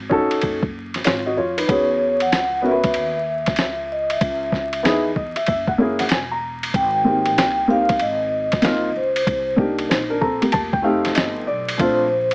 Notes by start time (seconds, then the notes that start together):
Already playing: G#1
0.10 C#4 D#4 F#4 A4, kick
0.31 muted upright bass stroke, ride
0.41 F#1, kick, ride
0.63 kick
0.94 snare, ride
1.04 G#1 F4 C#5, snare, hi-hat pedal, ride
1.26 F#4 D#5
1.37 F2 F4 C#5
1.58 D#4 B4, ride
1.67 E2 B3 C#4 F#4 G#4 C#5, kick, ride
2.20 F#5, ride
2.32 C#2, snare, hi-hat pedal, ride
2.62 B3 C#4 F#4 A#4
2.66 E5
2.71 B4
2.84 muted upright bass stroke, kick, ride
2.94 D#2, ride
3.46 kick, snare, ride
3.56 C#2, snare, hi-hat pedal, ride
3.92 D#5
4.10 E5, ride
4.21 C#2, kick, ride
4.52 kick, snare
4.73 ride
4.83 E2 B3 D#4 E4 G#4, snare, hi-hat pedal, ride
5.16 D#5, kick
5.36 E5, muted upright bass stroke, ride
5.46 F#1 E5, kick, ride
5.68 F#5, kick
5.78 A#3 C#4 E4 G#4
5.99 F#5, snare, ride
6.09 E1 G#5, snare, hi-hat pedal, ride
6.31 A#5
6.63 ride
6.74 G#1 G5, kick, ride
7.04 A#3 C4 D#4 G4
7.26 ride
7.38 C2, snare, hi-hat pedal, ride
7.68 A#3 C4 D#4 G4 F5
7.89 kick, ride
7.99 G#1 D#5, ride
8.52 kick, snare, ride
8.62 C2 A#3 C4 D#4 F4, snare, hi-hat pedal, ride
8.96 C#2 C5
9.16 ride
9.27 C2, kick, ride
9.56 A#3 D4 D#4 G4, kick
9.79 ride
9.89 A#1 D#4 C5, snare, hi-hat pedal, ride
10.10 D4 A#4
10.21 C4 A4 A#5, kick
10.41 A#3 G4, muted upright bass stroke, ride
10.52 F1 A5, kick, ride
10.73 G5, kick
10.82 A3 C4 D#4 G4 F5
11.05 snare, ride
11.15 G1 D#5, snare, hi-hat pedal, ride
11.47 B1 D5
11.69 ride
11.78 A#1 A3 C4 D4 F4 C5, kick, ride
12.31 ride